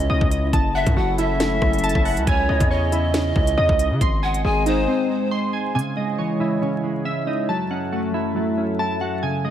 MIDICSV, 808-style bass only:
0, 0, Header, 1, 2, 480
1, 0, Start_track
1, 0, Key_signature, 4, "minor"
1, 0, Tempo, 434783
1, 587, Time_signature, 4, 2, 24, 8
1, 10492, End_track
2, 0, Start_track
2, 0, Title_t, "808-style bass"
2, 0, Program_c, 0, 38
2, 107, Note_on_c, 0, 37, 106
2, 229, Note_off_c, 0, 37, 0
2, 234, Note_on_c, 0, 37, 104
2, 573, Note_off_c, 0, 37, 0
2, 587, Note_on_c, 0, 30, 110
2, 940, Note_off_c, 0, 30, 0
2, 955, Note_on_c, 0, 42, 103
2, 1060, Note_off_c, 0, 42, 0
2, 1067, Note_on_c, 0, 30, 106
2, 1758, Note_off_c, 0, 30, 0
2, 1787, Note_on_c, 0, 30, 109
2, 2140, Note_off_c, 0, 30, 0
2, 2154, Note_on_c, 0, 30, 111
2, 2395, Note_on_c, 0, 37, 102
2, 2412, Note_off_c, 0, 30, 0
2, 2502, Note_off_c, 0, 37, 0
2, 2507, Note_on_c, 0, 37, 117
2, 2738, Note_off_c, 0, 37, 0
2, 2748, Note_on_c, 0, 37, 104
2, 2870, Note_off_c, 0, 37, 0
2, 2875, Note_on_c, 0, 40, 104
2, 3674, Note_off_c, 0, 40, 0
2, 3707, Note_on_c, 0, 37, 108
2, 3938, Note_off_c, 0, 37, 0
2, 3948, Note_on_c, 0, 40, 107
2, 4069, Note_off_c, 0, 40, 0
2, 4074, Note_on_c, 0, 37, 104
2, 4314, Note_on_c, 0, 49, 107
2, 4331, Note_off_c, 0, 37, 0
2, 4422, Note_off_c, 0, 49, 0
2, 4427, Note_on_c, 0, 32, 111
2, 4888, Note_off_c, 0, 32, 0
2, 4907, Note_on_c, 0, 32, 108
2, 5368, Note_off_c, 0, 32, 0
2, 10492, End_track
0, 0, End_of_file